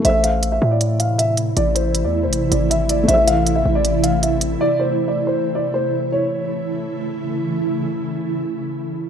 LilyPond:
<<
  \new Staff \with { instrumentName = "Grand piano" } { \time 4/4 \key a \minor \tempo 4 = 158 e''8 f''8. e''8 d''8. f''8 e''8 r8 | d''8 c''8. d''8 c''8. d''8 e''8 d''8 | e''8 f''8. e''8 d''8. f''8 e''8 r8 | d''8 c''8. d''8 c''8. d''8 c''4 |
cis''2. r4 | r1 | }
  \new Staff \with { instrumentName = "Felt piano" } { \time 4/4 \key a \minor <a a' c'' e''>1~ | <a a' c'' e''>1 | <a a' c'' e''>1~ | <a a' c'' e''>1 |
r1 | r1 | }
  \new Staff \with { instrumentName = "Ambient pad" } { \clef bass \time 4/4 \key a \minor <c e a e'>1~ | <c e a e'>1~ | <c e a e'>1~ | <c e a e'>1 |
<cis e a e'>1~ | <cis e a e'>1 | }
  \new Staff \with { instrumentName = "808-style bass" } { \clef bass \time 4/4 \key a \minor a,,4. a,2~ a,8 | a,,4~ a,,16 e,8~ e,32 a,,8~ a,,32 gis,,4. | a,,4. a,,2~ a,,8 | r1 |
r1 | r1 | }
  \new DrumStaff \with { instrumentName = "Drums" } \drummode { \time 4/4 hh8 hh8 hh4 hh8 hh8 hh8 hh8 | hh8 hh8 hh4 hh8 hh8 hh8 hh8 | hh8 hh8 hh4 hh8 hh8 hh8 hh8 | r4 r4 r4 r4 |
r4 r4 r4 r4 | r4 r4 r4 r4 | }
>>